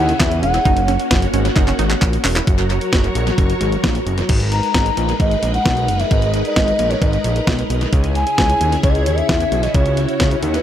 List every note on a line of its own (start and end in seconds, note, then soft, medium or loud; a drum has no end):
0.00 0.13 D#2 loud
0.00 0.64 C#3 medium
0.00 2.44 C#4 medium
0.00 0.17 E4 medium
0.00 0.64 E4 medium
0.00 0.62 G#4 medium
0.00 0.21 F#5 loud
0.09 closed hi-hat soft
0.20 0.44 E2 loud
0.20 0.42 E5 medium
0.20 kick loud
0.20 snare loud
0.20 clap loud
0.20 closed hi-hat medium
0.32 closed hi-hat medium
0.43 0.59 E1 loud
0.43 0.53 C#4 medium
0.43 1.30 F#5 loud
0.43 closed hi-hat medium
0.54 0.64 E4 medium
0.54 closed hi-hat medium
0.65 0.97 F#1 loud
0.65 2.46 A#3 medium
0.65 0.85 D#4 loud
0.65 2.46 F#4 medium
0.65 kick loud
0.65 closed hi-hat medium
0.77 closed hi-hat medium
0.88 1.08 C#4 medium
0.88 closed hi-hat medium
1.00 closed hi-hat medium
1.11 1.27 F#1 loud
1.11 kick loud
1.11 snare loud
1.11 closed hi-hat medium
1.22 closed hi-hat soft
1.34 1.50 G#1 loud
1.34 1.53 C#4 medium
1.34 closed hi-hat medium
1.45 closed hi-hat medium
1.56 1.72 F#1 loud
1.56 1.66 D#4 medium
1.56 kick loud
1.56 clap medium
1.56 closed hi-hat medium
1.68 1.78 C#4 medium
1.68 clap medium
1.68 closed hi-hat medium
1.79 1.95 G#1 medium
1.79 1.99 D#4 medium
1.79 closed hi-hat medium
1.90 clap medium
1.90 closed hi-hat soft
2.02 2.18 A#1 loud
2.02 kick loud
2.02 clap medium
2.02 closed hi-hat medium
2.13 closed hi-hat medium
2.25 2.40 E1 loud
2.25 2.34 C#4 medium
2.25 clap loud
2.25 open hi-hat medium
2.36 2.46 E4 medium
2.36 clap loud
2.36 closed hi-hat medium
2.47 2.79 F#1 loud
2.47 4.27 F#3 medium
2.47 4.27 F#4 medium
2.47 4.27 A#4 medium
2.47 4.27 C#5 medium
2.47 kick loud
2.47 closed hi-hat medium
2.58 closed hi-hat medium
2.70 closed hi-hat medium
2.81 closed hi-hat medium
2.93 3.09 F#1 loud
2.93 kick loud
2.93 snare loud
2.93 closed hi-hat medium
3.04 closed hi-hat soft
3.15 3.31 A#1 medium
3.15 closed hi-hat medium
3.27 closed hi-hat medium
3.38 3.54 F#1 loud
3.38 kick loud
3.38 closed hi-hat medium
3.50 closed hi-hat soft
3.61 3.77 G#1 medium
3.61 closed hi-hat medium
3.72 closed hi-hat soft
3.84 4.00 A#1 loud
3.84 kick loud
3.84 snare loud
3.84 closed hi-hat medium
3.95 closed hi-hat medium
4.06 4.22 F#1 medium
4.06 closed hi-hat medium
4.18 closed hi-hat medium
4.29 4.61 G#1 loud
4.29 7.89 G#3 medium
4.29 7.89 D#4 medium
4.29 7.89 A#4 medium
4.29 7.89 B4 medium
4.29 kick loud
4.29 closed hi-hat medium
4.29 crash medium
4.40 closed hi-hat medium
4.52 5.16 A#5 loud
4.52 closed hi-hat medium
4.63 closed hi-hat medium
4.75 4.91 G#1 medium
4.75 kick loud
4.75 snare loud
4.75 closed hi-hat medium
4.86 closed hi-hat soft
4.97 5.13 A#1 loud
4.97 closed hi-hat medium
5.09 closed hi-hat medium
5.20 5.36 G#1 loud
5.20 5.52 D#5 medium
5.20 kick loud
5.20 closed hi-hat medium
5.31 closed hi-hat soft
5.43 5.59 A#1 medium
5.43 closed hi-hat medium
5.54 6.01 F#5 medium
5.54 closed hi-hat soft
5.66 5.90 B1 loud
5.66 kick loud
5.66 snare loud
5.66 closed hi-hat medium
5.77 closed hi-hat medium
5.88 6.04 F#1 medium
5.88 closed hi-hat medium
6.00 6.13 E5 medium
6.00 closed hi-hat medium
6.11 6.43 G#1 loud
6.11 6.45 D#5 medium
6.11 kick loud
6.11 closed hi-hat medium
6.22 closed hi-hat medium
6.34 closed hi-hat medium
6.45 6.92 D#5 medium
6.45 closed hi-hat medium
6.56 6.72 G#1 loud
6.56 kick loud
6.56 snare loud
6.56 closed hi-hat medium
6.68 closed hi-hat soft
6.79 6.95 A#1 medium
6.79 closed hi-hat medium
6.91 7.04 C#5 medium
6.91 closed hi-hat medium
7.02 7.18 G#1 loud
7.02 7.70 D#5 medium
7.02 kick loud
7.02 closed hi-hat medium
7.13 closed hi-hat soft
7.24 7.40 A#1 medium
7.24 closed hi-hat medium
7.36 closed hi-hat soft
7.47 7.63 B1 loud
7.47 kick loud
7.47 snare loud
7.47 closed hi-hat medium
7.59 closed hi-hat medium
7.70 7.86 B1 medium
7.70 closed hi-hat medium
7.81 closed hi-hat medium
7.93 8.25 C#2 loud
7.93 10.62 C#3 medium
7.93 10.62 C#4 medium
7.93 10.62 E4 medium
7.93 9.73 G#4 medium
7.93 kick loud
7.93 closed hi-hat medium
8.04 closed hi-hat medium
8.15 8.80 G#5 loud
8.15 closed hi-hat medium
8.27 closed hi-hat medium
8.38 8.54 C#2 medium
8.38 kick loud
8.38 snare loud
8.38 closed hi-hat medium
8.50 closed hi-hat soft
8.61 8.77 D#2 medium
8.61 closed hi-hat medium
8.72 closed hi-hat medium
8.83 9.08 C#2 medium
8.83 8.92 C#5 medium
8.83 kick loud
8.83 closed hi-hat medium
8.91 8.98 D#5 medium
8.95 9.03 D#5 medium
8.95 closed hi-hat soft
9.02 9.19 C#5 medium
9.06 9.22 D#2 medium
9.06 closed hi-hat medium
9.18 9.65 E5 loud
9.18 closed hi-hat soft
9.29 9.45 E2 medium
9.29 kick loud
9.29 snare loud
9.29 closed hi-hat medium
9.40 closed hi-hat medium
9.52 9.68 B1 medium
9.52 closed hi-hat medium
9.63 9.76 D#5 medium
9.63 closed hi-hat medium
9.74 10.06 C#2 loud
9.74 10.62 F#4 medium
9.74 10.08 C#5 medium
9.74 kick loud
9.74 closed hi-hat medium
9.86 closed hi-hat medium
9.97 closed hi-hat medium
10.09 10.30 C#5 medium
10.09 closed hi-hat medium
10.20 10.36 C#2 loud
10.20 kick loud
10.20 snare loud
10.20 closed hi-hat medium
10.31 10.38 C#5 medium
10.31 closed hi-hat soft
10.43 10.59 D#2 medium
10.43 closed hi-hat medium
10.54 10.62 B4 medium
10.54 closed hi-hat medium